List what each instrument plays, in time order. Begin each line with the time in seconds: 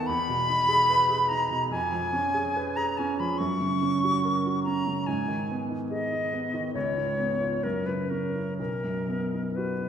Already playing: grand piano D#3 B3 B4
0.07 grand piano E2, flute B5
0.29 grand piano B2
0.49 grand piano D#4
0.68 grand piano G#4
0.90 grand piano B4
1.10 grand piano G#4
1.29 grand piano D#4, flute A#5
1.50 grand piano B2
1.71 grand piano F2, flute G#5
1.93 grand piano F3
2.13 grand piano C#4
2.34 grand piano G#4
2.56 grand piano B4
2.76 grand piano G#4, flute A#5
2.98 grand piano C#4, flute G#5
3.19 grand piano F3, flute B5
3.38 grand piano F#2, flute C#6
3.60 grand piano C#3
3.81 grand piano C#4
4.03 grand piano F#4
4.25 grand piano A#4
4.46 grand piano F#4
4.64 grand piano C#4, flute A#5
4.87 grand piano C#3
5.07 grand piano G#2, flute G#5
5.28 grand piano D#3
5.51 grand piano B3
5.70 grand piano D#4
5.89 grand piano G#4, flute D#5
6.12 grand piano D#4
6.33 grand piano B3
6.53 grand piano D#3
6.74 grand piano C#2, flute C#5
6.97 grand piano G#2
7.19 grand piano B3
7.41 grand piano F4
7.63 grand piano F#2, flute A#4
7.86 grand piano C#3, flute B4
8.10 grand piano C#4, flute A#4
8.35 grand piano E4
8.59 grand piano B1, flute A#4
8.84 grand piano F#2
9.08 grand piano B3
9.33 grand piano D#4
9.55 grand piano F#4, flute B4
9.81 grand piano D#4